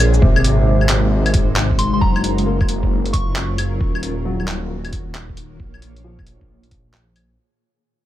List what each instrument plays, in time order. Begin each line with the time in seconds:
Already playing: detuned saw bass A#1, ambient pad A#2 A#3 G#4 C#5, felt piano G#3
0.14 cabasa
0.22 detuned saw bass G#1, felt piano C3, ambient pad G#3, kick
0.36 ambient pad C5, claves
0.41 ambient pad D#4, closed hi-hat
0.66 ambient pad F#4
0.81 claves
0.89 clap, closed hi-hat
1.26 closed hi-hat, claves
1.34 kick, closed hi-hat
1.56 clap
1.71 kick
1.79 synth bell C6, closed hi-hat
1.93 synth bell C6
2.01 detuned saw bass F#1, felt piano F#3, ambient pad F#3, synth bell A#5, kick
2.12 ambient pad C#4, claves
2.24 closed hi-hat
2.38 ambient pad F4, closed hi-hat
2.46 felt piano A#3
2.51 ambient pad A#4
2.61 kick, claves
2.69 closed hi-hat
2.83 kick
3.06 closed hi-hat
3.13 synth bell C#6, kick, closed hi-hat
3.36 clap
3.58 closed hi-hat, claves
3.80 detuned saw bass D#1, ambient pad D#3, kick
3.90 ambient pad F#4
3.95 claves
4.03 closed hi-hat
4.08 ambient pad A#3
4.25 felt piano F#3
4.33 ambient pad C#5
4.40 claves
4.48 clap, closed hi-hat
4.85 closed hi-hat, claves
4.93 kick, closed hi-hat
5.15 clap
5.29 kick
5.37 closed hi-hat
5.59 detuned saw bass A#1, ambient pad A#2, kick
5.74 claves
5.82 closed hi-hat
5.95 ambient pad G#4, closed hi-hat
6.04 felt piano F3
6.19 kick, claves
6.27 closed hi-hat
6.41 kick
6.63 closed hi-hat
6.71 kick, closed hi-hat
6.94 clap
7.16 closed hi-hat, claves